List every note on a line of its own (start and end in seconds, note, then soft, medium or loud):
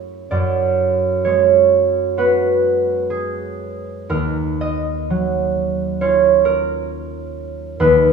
0.00 0.30 F#2 soft
0.00 0.35 A3 soft
0.00 0.35 E4 soft
0.00 2.38 G#4 soft
0.00 0.35 C#5 medium
0.00 0.35 E5 medium
0.00 0.94 F#5 medium
0.31 4.14 F#2 medium
0.31 4.14 D5 medium
1.25 4.14 G#3 soft
1.25 2.82 C#5 medium
2.17 4.13 B3 soft
2.17 6.08 F#4 soft
2.17 4.14 B4 medium
3.10 4.14 G#4 medium
4.09 7.79 D#2 soft
4.09 6.44 A#4 medium
4.61 8.13 D#5 medium
5.10 7.83 F#3 soft
6.01 7.84 C#4 soft
6.01 8.13 F4 soft
6.01 7.83 C#5 medium
6.45 7.83 A#4 medium
7.80 8.13 D#2 medium
7.80 8.13 B4 medium